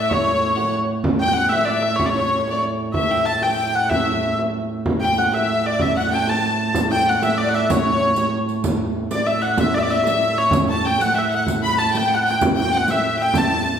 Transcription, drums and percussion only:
0.11 frame drum medium
0.57 frame drum medium
1.04 frame drum medium
1.52 frame drum medium
2.00 frame drum medium
2.47 frame drum medium
2.80 frame drum soft
2.94 frame drum medium
3.42 frame drum medium
3.91 frame drum medium
4.39 frame drum medium
4.86 frame drum medium
5.32 frame drum medium
5.79 frame drum medium
6.27 frame drum medium
6.74 riq medium
6.74 frame drum medium
7.22 riq soft
7.22 frame drum medium
7.54 riq soft
7.70 riq medium
7.70 frame drum medium
8.16 riq soft
8.16 frame drum medium
8.49 riq soft
8.64 riq medium
8.64 frame drum medium
9.11 riq soft
9.11 frame drum medium
9.42 riq soft
9.57 riq medium
9.57 frame drum medium
9.89 riq soft
9.89 frame drum soft
10.04 riq soft
10.04 frame drum medium
10.22 riq soft
10.35 frame drum soft
10.51 riq medium
10.51 frame drum medium
10.99 riq soft
10.99 frame drum medium
11.32 riq soft
11.47 riq medium
11.47 frame drum medium
11.94 riq soft
11.94 frame drum medium
12.27 riq soft
12.41 riq medium
12.41 frame drum medium
12.88 riq soft
12.88 frame drum medium
13.20 riq soft
13.34 riq medium
13.34 frame drum medium
13.66 riq soft
13.66 frame drum soft

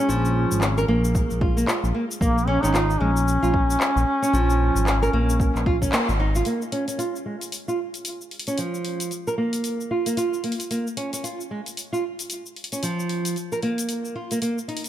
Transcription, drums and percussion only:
0.10 shaker medium
0.25 shaker soft
0.51 shaker medium
0.61 clap medium
0.61 shaker soft
0.78 shaker soft
1.04 shaker medium
1.15 kick loud
1.15 shaker soft
1.31 shaker soft
1.41 kick loud
1.58 shaker medium
1.68 clap medium
1.68 shaker soft
1.84 shaker soft
2.11 shaker medium
2.21 kick loud
2.21 shaker medium
2.38 shaker soft
2.63 clap soft
2.63 shaker medium
2.74 clap medium
2.74 shaker medium
2.90 shaker soft
3.17 shaker medium
3.28 shaker soft
3.44 shaker soft
3.54 kick medium
3.70 shaker medium
3.80 clap medium
3.80 shaker medium
3.97 shaker soft
4.23 shaker medium
4.34 shaker medium
4.50 shaker soft
4.76 shaker medium
4.87 clap medium
4.87 shaker medium
5.03 shaker soft
5.30 shaker medium
5.40 kick medium
5.40 shaker medium
5.55 clap soft
5.55 shaker soft
5.66 kick loud
5.82 kick medium
5.82 shaker medium
5.92 clap loud
5.92 shaker soft
6.09 shaker soft
6.35 shaker medium
6.45 open hi-hat medium
6.45 shaker medium
6.62 shaker soft
6.72 open hi-hat soft
6.88 open hi-hat soft
6.88 shaker medium
6.99 open hi-hat soft
6.99 shaker soft
7.16 shaker soft
7.41 open hi-hat soft
7.41 shaker medium
7.52 open hi-hat soft
7.52 shaker soft
7.69 shaker soft
7.94 open hi-hat soft
7.94 shaker medium
8.05 open hi-hat medium
8.05 shaker soft
8.21 shaker soft
8.31 open hi-hat soft
8.39 open hi-hat soft
8.47 open hi-hat soft
8.47 shaker medium
8.58 open hi-hat soft
8.58 shaker medium
8.74 shaker soft
8.85 open hi-hat soft
9.00 open hi-hat soft
9.00 shaker medium
9.11 open hi-hat soft
9.11 shaker medium
9.27 shaker soft
9.53 open hi-hat soft
9.53 shaker medium
9.64 open hi-hat soft
9.64 shaker soft
9.81 shaker soft
10.06 open hi-hat soft
10.06 shaker medium
10.17 open hi-hat soft
10.17 shaker medium
10.34 shaker soft
10.44 open hi-hat soft
10.52 open hi-hat soft
10.60 open hi-hat soft
10.60 shaker medium
10.71 open hi-hat soft
10.71 shaker medium
10.87 shaker soft
10.97 open hi-hat soft
11.13 open hi-hat soft
11.13 shaker medium
11.24 open hi-hat soft
11.24 shaker medium
11.41 shaker soft
11.66 open hi-hat soft
11.66 shaker medium
11.77 open hi-hat soft
11.77 shaker soft
11.94 shaker soft
12.19 open hi-hat soft
12.19 shaker medium
12.30 open hi-hat soft
12.30 shaker soft
12.46 shaker soft
12.56 open hi-hat soft
12.64 open hi-hat soft
12.72 open hi-hat soft
12.72 shaker medium
12.83 open hi-hat soft
12.83 shaker soft
13.00 shaker soft
13.09 open hi-hat soft
13.25 open hi-hat soft
13.25 shaker medium
13.36 open hi-hat soft
13.36 shaker soft
13.52 shaker soft
13.62 open hi-hat soft
13.78 open hi-hat soft
13.78 shaker medium
13.89 open hi-hat soft
13.89 shaker soft
14.05 shaker soft
14.31 open hi-hat soft
14.31 shaker medium
14.42 open hi-hat soft
14.42 shaker medium
14.58 shaker soft
14.69 open hi-hat soft
14.77 open hi-hat soft
14.84 open hi-hat soft
14.84 shaker medium

